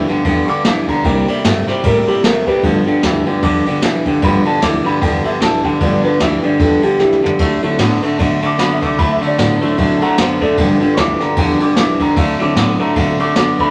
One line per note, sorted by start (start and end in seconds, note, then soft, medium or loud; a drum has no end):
0.07 0.23 G2 medium
0.07 0.24 D3 medium
0.07 0.24 F3 medium
0.07 0.25 B3 medium
0.07 0.25 F4 medium
0.07 0.24 G4 medium
0.07 ride medium
0.24 0.45 E2 medium
0.24 0.48 G2 medium
0.24 0.46 G2 medium
0.24 0.48 D3 loud
0.24 0.46 D3 medium
0.24 0.48 F3 medium
0.24 0.48 B3 loud
0.24 0.48 F4 medium
0.24 0.46 G4 loud
0.24 kick loud
0.24 ride medium
0.45 0.63 G2 medium
0.45 0.63 D3 medium
0.45 0.65 F4 medium
0.45 0.64 G4 medium
0.45 0.47 C#6 medium
0.45 muted upright bass stroke medium
0.45 ride medium
0.49 0.62 F3 soft
0.49 0.63 B3 soft
0.49 0.65 D6 loud
0.63 0.84 B1 medium
0.63 0.85 G2 medium
0.63 0.86 E3 medium
0.63 0.87 F3 medium
0.63 0.88 B3 medium
0.63 snare loud
0.63 ride medium
0.87 1.02 B1 medium
0.87 1.03 G2 medium
0.87 1.03 D3 medium
0.87 1.04 F3 soft
0.87 1.04 B3 soft
0.87 1.04 F4 medium
0.87 1.04 G4 medium
0.87 1.04 A#5 loud
0.87 kick medium
0.87 ride medium
1.03 1.24 C2 loud
1.03 1.27 C3 medium
1.03 1.25 C3 medium
1.03 1.27 G3 medium
1.03 1.26 G3 loud
1.03 1.32 A#3 medium
1.03 1.27 A#3 medium
1.03 1.32 D4 medium
1.03 1.33 E4 medium
1.03 1.27 E4 medium
1.03 1.25 G4 medium
1.03 1.27 G5 loud
1.03 kick loud
1.03 ride medium
1.26 1.43 C3 medium
1.26 1.43 G3 medium
1.26 1.43 A#3 soft
1.26 1.44 E4 medium
1.26 1.43 G4 medium
1.26 1.44 D5 medium
1.26 muted upright bass stroke medium
1.26 ride medium
1.43 1.64 G2 loud
1.43 1.65 C3 medium
1.43 1.66 G3 medium
1.43 1.65 A3 loud
1.43 1.67 A#3 medium
1.43 1.67 E4 medium
1.43 1.66 G4 medium
1.43 1.67 G5 loud
1.43 snare loud
1.43 ride medium
1.67 1.82 C3 medium
1.67 1.82 G3 medium
1.67 1.83 A#3 soft
1.67 1.84 E4 soft
1.67 1.83 G4 medium
1.67 1.84 C5 medium
1.67 muted upright bass stroke medium
1.67 snare soft
1.67 ride medium
1.83 2.03 A2 medium
1.83 2.06 C3 medium
1.83 2.05 C3 medium
1.83 2.07 G3 medium
1.83 2.05 G3 medium
1.83 2.07 A#3 loud
1.83 2.07 E4 medium
1.83 2.05 G4 medium
1.83 2.06 A#4 loud
1.83 kick loud
1.83 ride loud
2.06 2.22 C3 medium
2.06 2.22 G3 medium
2.06 2.22 A#3 medium
2.06 2.24 E4 medium
2.06 2.23 G4 medium
2.06 muted upright bass stroke medium
2.06 ride medium
2.22 2.43 E2 medium
2.22 2.45 C3 medium
2.22 2.46 G3 medium
2.22 2.45 A3 medium
2.22 2.46 A#3 medium
2.22 2.46 E4 medium
2.22 2.46 A#4 loud
2.22 snare loud
2.22 ride medium
2.46 2.61 A#1 loud
2.46 2.62 C3 medium
2.46 2.62 G3 medium
2.46 2.63 A#3 medium
2.46 2.63 E4 medium
2.46 2.63 G4 medium
2.46 2.62 G4 medium
2.46 2.63 B4 loud
2.46 kick medium
2.46 ride medium
2.62 2.83 G1 loud
2.62 2.85 G2 medium
2.62 2.84 G2 medium
2.62 2.86 D3 medium
2.62 2.85 D3 loud
2.62 2.86 F3 medium
2.62 2.91 A3 medium
2.62 2.91 B3 medium
2.62 2.86 B3 medium
2.62 2.91 F4 medium
2.62 2.85 F4 medium
2.62 2.83 G4 medium
2.62 kick loud
2.62 ride medium
2.84 3.01 G2 medium
2.84 3.02 D3 medium
2.84 3.00 F3 soft
2.84 3.02 B3 medium
2.84 3.03 F4 medium
2.84 3.02 G4 medium
2.84 muted upright bass stroke medium
2.84 ride medium
3.01 3.23 D2 loud
3.01 3.24 G2 medium
3.01 3.24 E3 loud
3.01 3.25 F3 medium
3.01 3.25 B3 medium
3.01 3.25 F4 medium
3.01 3.23 G4 medium
3.01 snare loud
3.01 ride medium
3.25 3.41 G2 medium
3.25 3.41 D3 medium
3.25 3.42 F3 medium
3.25 3.40 A3 soft
3.25 3.40 B3 soft
3.25 3.42 B3 medium
3.25 3.40 F4 medium
3.25 3.42 F4 medium
3.25 3.42 G4 medium
3.25 muted upright bass stroke medium
3.25 ride medium
3.42 3.62 E2 loud
3.42 3.65 G2 medium
3.42 3.64 G2 medium
3.42 3.65 D3 medium
3.42 3.64 D3 loud
3.42 3.66 F3 medium
3.42 3.66 B3 loud
3.42 3.65 F4 medium
3.42 3.64 G4 loud
3.42 3.82 D6 loud
3.42 kick loud
3.42 ride medium
3.65 3.81 G2 medium
3.65 3.81 D3 medium
3.65 3.81 F3 soft
3.65 3.82 B3 medium
3.65 3.83 F4 medium
3.65 3.82 G4 medium
3.65 muted upright bass stroke medium
3.65 ride medium
3.82 4.02 B1 medium
3.82 4.03 G2 medium
3.82 4.03 E3 loud
3.82 4.05 F3 medium
3.82 4.06 B3 medium
3.82 4.05 F4 medium
3.82 4.04 G4 medium
3.82 snare loud
3.82 ride medium
4.05 4.20 F1 medium
4.05 4.21 G2 medium
4.05 4.21 D3 medium
4.05 4.22 F3 medium
4.05 4.23 B3 medium
4.05 4.22 F4 medium
4.05 4.22 G4 medium
4.05 kick medium
4.05 ride medium
4.22 4.42 G1 loud
4.22 4.43 G2 medium
4.22 4.45 G2 medium
4.22 4.43 D3 medium
4.22 4.46 D3 medium
4.22 4.46 F3 medium
4.22 5.77 A3 medium
4.22 5.77 B3 medium
4.22 4.46 B3 medium
4.22 5.77 F4 medium
4.22 4.45 F4 medium
4.22 4.44 G4 medium
4.22 4.46 B5 loud
4.22 kick loud
4.22 ride loud
4.45 4.60 G2 medium
4.45 4.60 D3 medium
4.45 4.59 F3 soft
4.45 4.61 B3 medium
4.45 4.62 F4 medium
4.45 4.62 G4 medium
4.45 4.62 A5 loud
4.45 muted upright bass stroke medium
4.45 ride medium
4.61 4.81 D2 loud
4.61 4.82 G2 medium
4.61 4.83 E3 loud
4.61 4.84 F3 medium
4.61 4.85 B3 medium
4.61 4.85 F4 medium
4.61 4.83 G4 medium
4.61 4.85 D6 loud
4.61 snare loud
4.61 ride medium
4.84 4.99 G2 medium
4.84 5.00 D3 medium
4.84 5.01 F3 soft
4.84 5.01 B3 medium
4.84 5.01 F4 medium
4.84 5.01 G4 medium
4.84 5.01 B5 loud
4.84 muted upright bass stroke medium
4.84 ride medium
5.01 5.21 E2 loud
5.01 5.24 G2 medium
5.01 5.22 G2 medium
5.01 5.24 D3 medium
5.01 5.22 D3 loud
5.01 5.25 F3 medium
5.01 5.25 B3 medium
5.01 5.24 F4 medium
5.01 5.22 G4 medium
5.01 5.24 G5 loud
5.01 kick loud
5.01 ride medium
5.23 5.39 G2 medium
5.23 5.39 D3 medium
5.23 5.39 F3 soft
5.23 5.40 B3 medium
5.23 5.41 F4 medium
5.23 5.40 G4 medium
5.23 5.41 E5 loud
5.23 muted upright bass stroke medium
5.23 ride medium
5.40 5.61 B1 loud
5.40 5.62 G2 medium
5.40 5.62 E3 medium
5.40 5.64 F3 medium
5.40 5.64 B3 medium
5.40 5.63 F4 medium
5.40 5.62 G4 medium
5.40 5.64 A5 loud
5.40 snare loud
5.40 ride medium
5.63 5.78 F1 medium
5.63 5.79 G2 medium
5.63 5.79 D3 medium
5.63 5.80 F3 soft
5.63 5.80 B3 medium
5.63 5.81 F4 medium
5.63 5.80 G4 medium
5.63 5.81 G5 medium
5.63 kick medium
5.63 ride medium
5.80 6.00 G1 loud
5.80 6.04 G2 medium
5.80 6.01 G2 medium
5.80 6.04 D3 medium
5.80 6.02 D3 loud
5.80 6.04 F3 medium
5.80 6.40 A3 medium
5.80 6.40 B3 medium
5.80 6.04 B3 medium
5.80 6.40 F4 medium
5.80 6.03 F4 medium
5.80 6.02 G4 medium
5.80 6.04 D5 loud
5.80 kick loud
5.80 ride medium
6.03 6.19 G2 medium
6.03 6.19 D3 medium
6.03 6.18 F3 soft
6.03 6.20 B3 soft
6.03 6.21 F4 medium
6.03 6.20 G4 medium
6.03 6.20 B4 loud
6.03 muted upright bass stroke medium
6.03 ride medium
6.20 6.40 D2 medium
6.20 6.41 G2 medium
6.20 6.41 E3 loud
6.20 6.43 F3 medium
6.20 6.44 B3 medium
6.20 6.42 F4 medium
6.20 6.41 G4 medium
6.20 6.43 E5 loud
6.20 snare loud
6.20 ride medium
6.42 6.58 G2 medium
6.42 6.59 D3 medium
6.42 6.59 F3 soft
6.42 6.60 B3 medium
6.42 6.60 F4 medium
6.42 6.59 G4 medium
6.42 6.60 D5 loud
6.42 ride medium
6.58 6.80 E2 medium
6.58 6.83 G2 medium
6.58 6.81 G2 medium
6.58 6.83 D3 medium
6.58 6.81 D3 medium
6.58 6.83 F3 medium
6.58 6.80 A3 soft
6.58 6.80 B3 soft
6.58 6.84 B3 medium
6.58 6.80 F4 medium
6.58 6.83 F4 medium
6.58 6.81 G4 medium
6.58 6.83 A4 medium
6.58 kick loud
6.58 ride medium
6.82 6.98 G2 medium
6.82 6.98 D3 medium
6.82 6.97 F3 soft
6.82 6.99 B3 soft
6.82 6.99 F4 medium
6.82 6.99 G4 medium
6.82 6.98 G4 loud
6.82 muted upright bass stroke medium
6.82 ride medium
6.99 7.19 B1 loud
6.99 7.20 G2 medium
6.99 7.21 E3 medium
6.99 7.22 F3 medium
6.99 7.23 B3 medium
6.99 7.21 F4 medium
6.99 7.56 G4 loud
6.99 7.20 G4 medium
6.99 snare medium
7.12 mid tom medium
7.22 7.37 F1 medium
7.22 7.38 G2 medium
7.22 7.38 D3 medium
7.22 7.38 F3 soft
7.22 7.39 B3 medium
7.22 7.39 F4 medium
7.22 7.39 G4 medium
7.26 floor tom loud
7.38 7.59 D2 medium
7.38 7.62 D3 medium
7.38 7.61 D3 medium
7.38 7.62 F#3 medium
7.38 7.61 A3 medium
7.38 7.62 C4 medium
7.38 7.62 D4 medium
7.38 7.60 A4 medium
7.38 kick loud
7.38 ride medium
7.38 splash medium
7.61 7.78 D3 medium
7.61 7.86 F#3 medium
7.61 7.78 A3 medium
7.61 7.87 C4 medium
7.61 7.78 C4 medium
7.61 7.79 D4 medium
7.61 7.87 E4 medium
7.61 7.79 A4 medium
7.61 muted upright bass stroke medium
7.61 ride medium
7.78 7.99 A2 loud
7.78 8.00 D3 medium
7.78 8.02 F#3 medium
7.78 8.01 B3 medium
7.78 8.02 C4 medium
7.78 8.02 D4 medium
7.78 8.00 A4 medium
7.78 snare loud
7.78 ride medium
8.01 8.18 D3 medium
8.01 8.18 A3 medium
8.01 8.18 C4 medium
8.01 8.18 D4 medium
8.01 8.18 A4 medium
8.01 ride medium
8.18 8.39 B2 loud
8.18 8.42 D3 medium
8.18 8.40 D3 medium
8.18 8.42 F#3 loud
8.18 8.40 A3 loud
8.18 8.42 C4 loud
8.18 8.41 D4 loud
8.18 8.39 A4 loud
8.18 kick loud
8.18 ride medium
8.40 8.57 D3 medium
8.40 8.57 A3 medium
8.40 8.58 C4 soft
8.40 8.59 D4 medium
8.40 8.58 A4 medium
8.40 muted upright bass stroke medium
8.40 ride medium
8.46 8.59 D6 loud
8.58 8.78 F#2 loud
8.58 8.79 D3 medium
8.58 8.81 F#3 medium
8.58 8.80 B3 loud
8.58 8.82 C4 medium
8.58 8.82 D4 medium
8.58 8.80 A4 medium
8.58 8.72 B5 medium
8.58 snare loud
8.58 ride medium
8.73 8.85 E5 medium
8.81 8.96 C2 medium
8.81 8.97 D3 medium
8.81 8.97 A3 medium
8.81 8.98 C4 medium
8.81 8.98 D4 medium
8.81 8.98 A4 medium
8.81 kick medium
8.81 ride medium
8.86 8.98 D6 medium
8.98 9.18 D2 loud
8.98 9.21 D3 medium
8.98 9.20 D3 medium
8.98 9.21 F#3 medium
8.98 9.20 A3 loud
8.98 9.22 C4 loud
8.98 9.22 D4 medium
8.98 9.20 A4 medium
8.98 9.11 B5 loud
8.98 kick loud
8.98 ride medium
9.12 9.25 E5 loud
9.21 9.36 D3 medium
9.21 9.37 A3 medium
9.21 9.38 C4 medium
9.21 9.39 D4 medium
9.21 9.38 A4 medium
9.21 muted upright bass stroke medium
9.21 ride medium
9.27 9.46 D5 loud
9.37 9.58 A2 loud
9.37 9.59 D3 medium
9.37 9.61 F#3 medium
9.37 9.59 B3 loud
9.37 9.62 C4 medium
9.37 9.61 D4 medium
9.37 9.60 A4 medium
9.37 snare loud
9.37 ride medium
9.61 9.76 D3 medium
9.61 10.15 F#3 medium
9.61 9.76 A3 medium
9.61 10.15 C4 medium
9.61 9.77 C4 soft
9.61 9.78 D4 medium
9.61 10.15 E4 medium
9.61 9.78 A4 medium
9.61 muted upright bass stroke medium
9.61 ride medium
9.77 9.98 B2 loud
9.77 10.01 D3 loud
9.77 9.99 D3 medium
9.77 10.01 F#3 loud
9.77 9.99 A3 medium
9.77 10.01 C4 loud
9.77 10.02 D4 loud
9.77 9.99 A4 loud
9.77 kick loud
9.77 ride loud
9.98 10.16 D3 medium
9.98 10.17 A4 medium
9.98 10.00 A5 medium
9.98 muted upright bass stroke medium
9.98 ride medium
10.02 10.17 A3 medium
10.02 10.18 C4 medium
10.02 10.18 D4 medium
10.02 10.17 F#5 medium
10.02 10.18 A#5 loud
10.17 10.38 F#2 medium
10.17 10.39 D3 medium
10.17 10.40 F#3 medium
10.17 10.39 B3 loud
10.17 10.41 C4 medium
10.17 10.41 D4 medium
10.17 10.40 C5 medium
10.17 10.41 F5 loud
10.17 snare loud
10.17 ride medium
10.40 10.55 F#1 loud
10.40 10.56 D3 medium
10.40 10.56 A3 medium
10.40 10.58 C4 soft
10.40 10.57 D4 medium
10.40 10.57 A4 medium
10.40 10.57 A4 loud
10.40 10.58 D5 loud
10.40 kick medium
10.40 ride medium
10.56 10.77 G1 loud
10.56 10.80 G2 medium
10.56 10.78 G2 medium
10.56 10.80 D3 medium
10.56 10.79 D3 medium
10.56 10.81 F3 medium
10.56 10.80 B3 medium
10.56 10.79 D4 medium
10.56 10.78 G4 medium
10.56 kick loud
10.56 ride medium
10.80 10.95 G2 medium
10.80 10.96 D3 medium
10.80 10.95 F3 medium
10.80 11.34 A3 medium
10.80 11.34 B3 medium
10.80 10.96 B3 medium
10.80 10.97 D4 medium
10.80 11.34 F4 medium
10.80 10.97 G4 medium
10.80 muted upright bass stroke medium
10.80 ride medium
10.95 11.17 D2 loud
10.95 11.18 G2 medium
10.95 11.18 E3 loud
10.95 11.20 F3 medium
10.95 11.20 B3 medium
10.95 11.19 D4 medium
10.95 10.97 C#6 medium
10.95 snare loud
10.95 ride medium
10.99 11.18 G4 medium
10.99 11.21 D6 loud
11.19 11.35 G2 medium
11.19 11.35 D3 medium
11.19 11.36 F3 soft
11.19 11.37 B3 medium
11.19 11.37 D4 medium
11.19 11.36 G4 medium
11.19 11.37 A#5 medium
11.19 muted upright bass stroke medium
11.19 snare soft
11.19 ride medium
11.36 11.57 E2 loud
11.36 11.60 G2 medium
11.36 11.58 G2 medium
11.36 11.60 D3 medium
11.36 11.59 D3 loud
11.36 11.60 F3 loud
11.36 11.61 B3 loud
11.36 11.60 D4 medium
11.36 11.59 G4 medium
11.36 11.60 G5 loud
11.36 kick loud
11.36 ride loud
11.60 11.75 G2 medium
11.60 11.75 D3 medium
11.60 11.75 F3 medium
11.60 11.76 B3 medium
11.60 11.77 D4 medium
11.60 11.76 G4 medium
11.60 11.77 D6 medium
11.60 ride medium
11.74 11.96 B1 medium
11.74 11.97 G2 medium
11.74 11.98 E3 medium
11.74 11.99 F3 medium
11.74 12.00 B3 medium
11.74 11.77 C#6 medium
11.74 snare loud
11.74 ride medium
11.78 12.00 D4 medium
11.78 11.98 G4 medium
11.78 12.00 D6 loud
12.00 12.14 F1 medium
12.00 12.15 G2 medium
12.00 12.15 D3 medium
12.00 12.17 F3 soft
12.00 12.18 B3 medium
12.00 12.17 D4 medium
12.00 12.16 G4 medium
12.00 12.17 A#5 loud
12.00 kick medium
12.00 ride medium
12.16 12.36 D2 medium
12.16 12.40 D3 medium
12.16 12.37 D3 medium
12.16 12.40 F#3 medium
12.16 12.38 A3 loud
12.16 12.40 C4 medium
12.16 12.40 D4 medium
12.16 12.38 A4 loud
12.16 12.39 F5 loud
12.16 kick loud
12.16 ride loud
12.39 12.54 D3 medium
12.39 12.93 F#3 medium
12.39 12.55 A3 medium
12.39 12.93 C4 medium
12.39 12.55 C4 medium
12.39 12.56 D4 medium
12.39 12.93 E4 medium
12.39 12.56 A4 medium
12.39 12.57 D6 loud
12.39 ride medium
12.55 12.76 A2 loud
12.55 12.77 D3 medium
12.55 12.79 F#3 medium
12.55 12.77 B3 loud
12.55 12.80 C4 medium
12.55 12.78 A4 medium
12.55 12.80 D6 loud
12.55 snare loud
12.55 ride loud
12.79 12.94 D3 medium
12.79 12.95 A3 medium
12.79 12.96 C4 soft
12.79 12.97 D4 medium
12.79 12.96 A4 medium
12.79 12.96 A#5 loud
12.79 ride medium
12.96 13.16 B2 medium
12.96 13.17 D3 medium
12.96 13.19 D3 medium
12.96 13.20 F#3 medium
12.96 13.17 A3 loud
12.96 13.20 C4 medium
12.96 13.19 D4 medium
12.96 13.18 A4 medium
12.96 13.19 F5 loud
12.96 kick loud
12.96 ride medium
13.19 13.34 D3 medium
13.19 13.35 A3 medium
13.19 13.35 C4 medium
13.19 13.36 D4 medium
13.19 13.36 A4 medium
13.19 13.36 D6 loud
13.19 muted upright bass stroke medium
13.19 ride medium
13.33 13.56 F#2 loud
13.33 13.57 D3 medium
13.33 13.58 F#3 medium
13.33 13.57 B3 loud
13.33 13.59 C4 medium
13.33 13.59 D4 medium
13.33 13.36 C#6 medium
13.33 snare loud
13.33 ride medium
13.38 13.57 A4 medium
13.38 13.59 D6 loud
13.58 13.71 F#1 loud
13.58 13.71 D3 medium
13.58 13.71 A3 medium
13.58 13.71 C4 medium
13.58 13.71 D4 medium
13.58 13.71 A4 medium
13.58 13.71 B5 loud
13.58 kick medium
13.58 ride medium